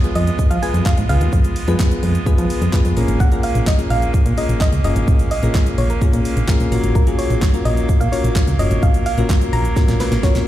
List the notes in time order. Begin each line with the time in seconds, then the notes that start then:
Already playing: G#3 B3 F4 C#5
0.04 G#3 B3 F4 G#4 B4, closed hi-hat, shaker
0.15 F2 D#5, open hi-hat, shaker
0.27 closed hi-hat, shaker
0.39 F3, kick, shaker
0.50 F3 F5, closed hi-hat, shaker
0.62 G#3 B3 F4 G#4 B4 G#5, open hi-hat, shaker
0.74 F2, closed hi-hat, shaker
0.85 F5, kick, snare, clap, shaker
0.98 G#2, closed hi-hat, shaker
1.09 C#2 G#3 B3 F4 G#4 B4 F5, open hi-hat, shaker
1.21 D#2, closed hi-hat, shaker
1.33 F2, kick, shaker
1.44 closed hi-hat, shaker
1.56 open hi-hat, shaker
1.68 F2 G#3 B3 F4 G#4 B4, closed hi-hat, shaker
1.79 kick, snare, clap, shaker
1.91 closed hi-hat, shaker
2.03 F2, open hi-hat, shaker
2.14 closed hi-hat, shaker
2.26 F3 G#3 B3 F4 G#4 B4, kick, shaker
2.38 F3, closed hi-hat, shaker
2.50 open hi-hat, shaker
2.62 F2, closed hi-hat, shaker
2.72 G#3 B3 F4 G#4 B4, kick, snare, clap, shaker
2.85 F2, closed hi-hat, shaker
2.97 A#1 A#3 C#4 F4 G#4 A#4, open hi-hat, shaker
3.08 G#1, closed hi-hat, shaker
3.20 A#1 F#5, kick, shaker
3.32 A#3 C#4 F4 G#4 A#4, closed hi-hat, shaker
3.43 F5, open hi-hat, shaker
3.55 A#1, closed hi-hat, shaker
3.66 D#5, kick, snare, clap, shaker
3.79 A#3 C#4 F4 G#4 A#4, closed hi-hat, shaker
3.90 A#1 F5, open hi-hat, shaker
4.02 closed hi-hat, shaker
4.14 A#2, kick, shaker
4.26 A#2, closed hi-hat, shaker
4.37 A#3 C#4 F4 G#4 A#4 D#5, open hi-hat, shaker
4.49 A#1, closed hi-hat, shaker
4.60 D#5, kick, snare, clap, shaker
4.72 C#2, closed hi-hat, shaker
4.84 F#1 A#3 C#4 F4 G#4 A#4 D#5, open hi-hat, shaker
4.96 G#1, closed hi-hat, shaker
5.08 A#1, kick, shaker
5.19 closed hi-hat, shaker
5.31 D#5, open hi-hat, shaker
5.43 A#1 A#3 C#4 F4 G#4 A#4, closed hi-hat, shaker
5.54 kick, snare, clap, shaker
5.66 closed hi-hat, shaker
5.78 A#1 C#5, open hi-hat, shaker
5.90 A#4, closed hi-hat, shaker
6.01 A#2 A#3 C#4 F4 G#4 A#4, kick, shaker
6.13 A#2, closed hi-hat, shaker
6.25 open hi-hat, shaker
6.37 A#1, closed hi-hat, shaker
6.48 A#3 C#4 F4 G#4 A#4, kick, snare, clap, shaker
6.60 A#1, closed hi-hat, shaker
6.72 A#1 F#3 A#3 C#4 F4 F#4 A#4 F5, open hi-hat, shaker
6.84 G#1, closed hi-hat, shaker
6.95 A#1 A#4, kick, shaker
7.07 A#3 C#4 F4 F#4 G#4, closed hi-hat, shaker
7.19 C#5, open hi-hat, shaker
7.30 A#1, closed hi-hat, shaker
7.41 kick, snare, clap, shaker
7.54 A#3 C#4 F4 F#4 A#4, closed hi-hat, shaker
7.65 A#1 D#5, open hi-hat, shaker
7.77 closed hi-hat, shaker
7.89 A#2, kick, shaker
8.00 A#2 F5, closed hi-hat, shaker
8.12 A#3 C#4 F4 F#4 A#4 C#5, open hi-hat, shaker
8.24 A#1, closed hi-hat, shaker
8.35 kick, snare, clap, shaker
8.47 C#2, closed hi-hat, shaker
8.59 F#1 A#3 C#4 F4 F#4 A#4 C#5 D#5, open hi-hat, shaker
8.71 G#1, closed hi-hat, shaker
8.83 A#1 F5, kick, shaker
8.94 closed hi-hat, shaker
9.06 F5, open hi-hat, shaker
9.18 A#1 A#3 C#4 F4 F#4 A#4, closed hi-hat, shaker
9.29 kick, snare, clap, shaker
9.41 closed hi-hat, shaker
9.53 A#1 A#5, open hi-hat, shaker
9.65 closed hi-hat, shaker
9.76 A#2 A#3 C#4 F4 F#4 A#4, kick, snare, shaker
9.88 A#2, snare, closed hi-hat, shaker
10.00 B4, snare, open hi-hat, shaker
10.12 A#1, snare, closed hi-hat, shaker
10.23 A#3 C#4 F4 F#4 A#4 C#5, kick, snare, shaker
10.35 A#1, snare, closed hi-hat, shaker